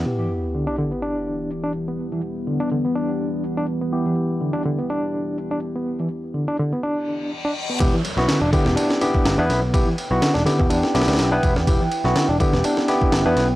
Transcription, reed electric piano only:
X:1
M:4/4
L:1/16
Q:"Swing 16ths" 1/4=124
K:Em
V:1 name="Reed electric piano"
z E, z2 D, D D, B, D4 z D z B,- | B, E, z2 D, D D, B, D4 z D z B,- | B, E, z2 D, D D, B, D4 z D z B,- | B, E, z2 D, D D, B, D4 z D z B, |
z E, z2 D, D D, B, D4 z D z B,- | B, E, z2 D, D D, B, D4 z D z B,- | B, E, z2 D, D D, B, D4 z D z B, |]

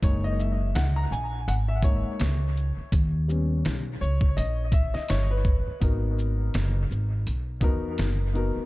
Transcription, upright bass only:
X:1
M:4/4
L:1/16
Q:"Swing 16ths" 1/4=83
K:G#m
V:1 name="Upright bass" clef=bass
F,,,4 C,,2 A,,,2 G,,,3 z C,,3 z | D,,4 B,,,2 C,,2 A,,,3 z =G,,,3 z | G,,,4 F,,,2 G,,,2 B,,,2 E,,2 F,,,3 z |]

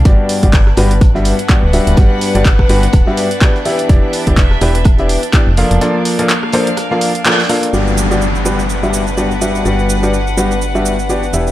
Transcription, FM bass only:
X:1
M:4/4
L:1/16
Q:"Swing 16ths" 1/4=125
K:G
V:1 name="FM bass" clef=bass
G,,, z2 G,,,3 G,,,4- G,,, z2 D,,, z D,,, | G,,, z2 G,,,3 G,,, z D,,, z6 z | E,,, z2 E,,,3 E,,,4- E,,, z2 =F,,, z F,,, | z16 |
G,,,16 | G,,,12- G,,,2 E,,,2 |]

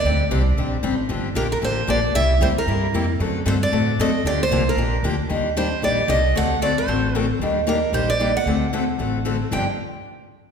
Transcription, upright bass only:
X:1
M:4/4
L:1/8
Q:"Swing" 1/4=228
K:Gm
V:1 name="Upright bass" clef=bass
D,,2 C,,2 B,,,2 A,,,2 | G,,,2 B,,,2 A,,,2 B,,,2 | C,,2 D,, z G,,2 F,,2 | ^F,,2 G,,2 A,,2 F,,2 |
D,,2 C,,2 B,,,2 D,,2 | E,,4 B,,,2 C,,2 | D,,4 A,,,4 | E,,4 B,,,4 |
D,,4 A,,,4 | G,,, z6 z |]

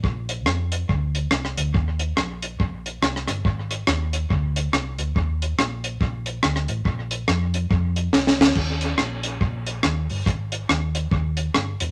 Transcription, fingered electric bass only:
X:1
M:4/4
L:1/8
Q:"Swing" 1/4=141
K:Eb
V:1 name="Fingered electric bass" clef=bass
B,,,2 F,,2 D,,2 C,, D,, | E,,2 B,,,2 B,,,2 C,, G,,, | A,,,2 E,,2 D,,2 C,, D,, | E,,2 B,,,2 B,,,2 D,, =A,,, |
B,,,2 F,,2 F,,2 C,, D,, | E,,2 B,,,2 B,,,2 E,, G,,, | A,,,2 E,,2 E,,2 G,,, _F,,, |]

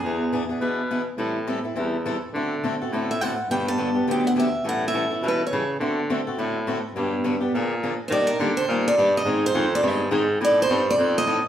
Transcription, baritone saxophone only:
X:1
M:4/4
L:1/8
Q:"Swing" 1/4=208
K:G
V:1 name="Baritone saxophone" clef=bass
E,,4 B,,4 | A,,4 E,,4 | D,4 A,,4 | G,,4 D,,4 |
A,,4 B,,2 ^C,2 | D,4 A,,4 | G,,4 _B,,4 | [K:Eb] E,2 D,2 B,,2 G,,2 |
A,,2 F,,2 G,,2 A,,2 | =A,,2 G,,2 F,,2 A,, z |]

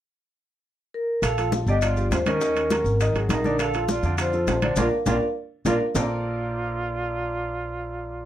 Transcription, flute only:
X:1
M:4/4
L:1/8
Q:1/4=204
K:Bb
V:1 name="Flute"
z8 | A2 z G F2 F _D- | _D4 z2 E2 | A2 F2 F4 |
F z F z3 F z | F8- | F8 |]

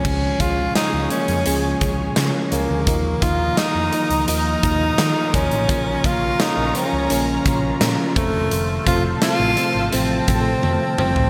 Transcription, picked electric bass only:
X:1
M:4/4
L:1/16
Q:1/4=85
K:Db
V:1 name="Picked electric bass" clef=bass
D,,2 D,,2 z D,, z F,, D,,2 D,,2 D, z D,, =D,, | E,,2 E,,2 z F,, z D,, E,,2 E,,2 E, z E,, =A,,, | B,,,2 B,,,2 z B,,, z D,, B,,,2 B,,,2 B,, z F,,, =E,,, | F,,,2 F,,,2 z =A,,, z _A,,, =A,,,2 A,,,2 F,, z F,,, A,,, |]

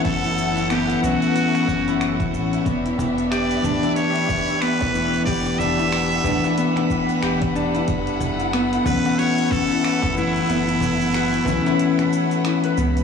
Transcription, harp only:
X:1
M:4/4
L:1/16
Q:"Swing 16ths" 1/4=92
K:F#phr
V:1 name="Harp"
E3 E B, E E z F z C E4 E | B, E E z G z D E4 E B, E E z | G z D E4 E B, E E z G z D E | z3 E B, E E z F z C E4 E |
B, E E z F z C E4 z E B B, z |]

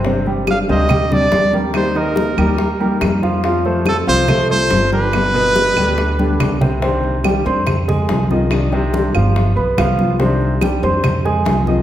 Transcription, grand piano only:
X:1
M:4/4
L:1/8
Q:1/4=142
K:Gphr
V:1 name="Grand piano"
[C,Cc] [G,G]2 [C,Cc] [G,G] [G,G]2 [G,GB]- | [G,GB] [E,Ee]2 [G,GB]2 [G,GB]2 [F,Ff] | [F,Ff] [=A,=Ac]2 [F,Ff] [A,Ac] [A,Ac]2 [D,DG]- | [D,DG] [=B,,=B,=B]2 [D,DG]2 [D,DG]2 [C,Cc] |
[K:Cm] [C,Cc]2 [G,Gg] [Ccc']2 [A,Aa]2 [E,e]- | [E,e] [C,Cc]2 [F,Ff]2 [=B,=B=b] [F,Ff]2 | [C,Cc]2 [G,Gg] [Ccc']2 [A,Aa]2 [E,e] |]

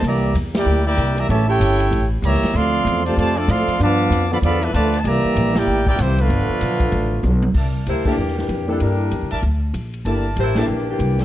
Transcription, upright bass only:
X:1
M:4/4
L:1/8
Q:"Swing" 1/4=192
K:C
V:1 name="Upright bass" clef=bass
C,,2 E,,2 D,,2 C,,2 | A,,,2 G,,,2 A,,,2 ^C,, z | D,,2 E,,2 F,,2 A,, z | G,,2 F,,2 E,,2 D,,2 |
C,, z _B,,,2 A,,,2 C,,2 | G,,, z B,,,2 A,,,2 B,,,2 | [K:Cmix] C,,2 D,,2 E,,2 F,,2 | G,,2 (3E,, C,, B,,, D,,2 B,,,2 |
G,,,2 A,,,2 B,,,2 C,,2 |]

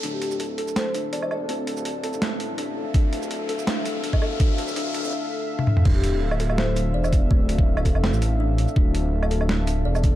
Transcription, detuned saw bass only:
X:1
M:4/4
L:1/16
Q:"Swing 16ths" 1/4=165
K:Dm
V:1 name="Detuned saw bass" clef=bass
D,,,12 E,,,4 | D,,,6- D,,, F,,,2 A,,,6 z | D,,,12 E,,,4 | D,,,6- D,,, F,,, z8 |
D,,,12 E,,,4 | D,,,6- D,,, F,,,2 A,,,6 z | D,,,12 E,,,4 |]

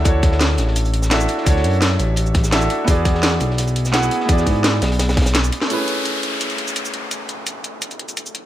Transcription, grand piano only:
X:1
M:4/4
L:1/8
Q:1/4=170
K:A
V:1 name="Grand piano"
[DEFAc]6 [DEFAe]2 | [DEFAc]6 [DEFAe]2 | [B,EFGd]6 [B,EFGf]2 | [B,EFGd]6 z2 |
[A,CEGB]8- | [A,CEGB]8 |]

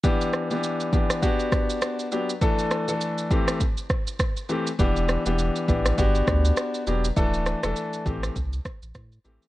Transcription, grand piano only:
X:1
M:4/4
L:1/16
Q:"Swing 16ths" 1/4=101
K:Em
V:1 name="Grand piano"
[E,B,DG]3 [E,B,DG]3 [E,B,DG]2 [B,DFG]6 [F,B,DG] z | [E,A,DA]3 [E,A,DA]3 [E,A,CG]2 z6 [E,A,CG] z | [E,B,DG]3 [E,B,DG]3 [E,B,DG]2 [B,DFG]6 [F,B,DG] z | [E,A,DA]3 [E,A,DA]3 [E,A,CG]2 z6 [E,A,CG] z |]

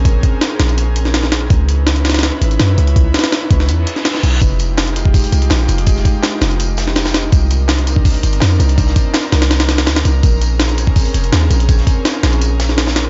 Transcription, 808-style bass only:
X:1
M:4/4
L:1/8
Q:1/4=165
K:Fm
V:1 name="808-style bass" clef=bass
B,,, z2 B,,,4- B,,, | D,,4 z A,,, _G,, D,,- | D,, z2 D,, _F,, z2 _C,, | F,,,4 z C,, B,,, F,,,- |
F,,, z2 F,,,4- F,,, | C,,4 z G,,, F,, C,,- | C,, z2 C,,3 =D,, C,, | B,,,4 z F,,, E,, B,,,- |
B,,, z2 B,,,4- B,,, |]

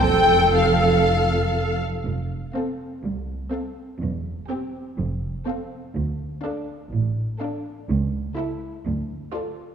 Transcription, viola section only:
X:1
M:4/4
L:1/8
Q:1/4=124
K:F
V:1 name="Viola section"
A6- A z | z2 C2 z2 C2 | z2 C2 z2 C2 | z2 D2 z2 D2 |
z2 E2 z2 F2 |]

